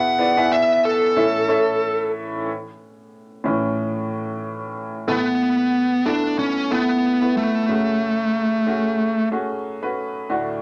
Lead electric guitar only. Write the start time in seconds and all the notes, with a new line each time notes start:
Already playing: F#5
0.52 E5
0.85 A4
5.08 B3
6.06 D4
6.39 C#4
6.72 B3
7.37 A3